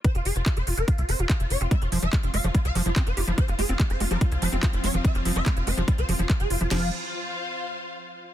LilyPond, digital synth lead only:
\new Staff \with { instrumentName = "Digital synth lead" } { \time 4/4 \key c \phrygian \tempo 4 = 144 c''16 f'16 aes'16 f'16 f'16 c''16 f'16 bes'16 f'16 f'16 c''16 f'16 f'16 f'16 des''16 f'16 | e''16 f'16 f'16 e''16 f'16 f'16 f''16 f'16 f'16 f''16 f'16 f'16 f'16 c''16 f'16 f'16 | c''16 f'16 aes'16 f'16 f'16 c''16 f'16 bes'16 f'16 f'16 c''16 f'16 f'16 f'16 des''16 f'16 | e''16 f'16 f'16 e''16 f'16 f'16 c''16 f'16 f'16 c''16 f'16 f'16 f'16 aes'16 f'16 f'16 |
f'8 r2. r8 | }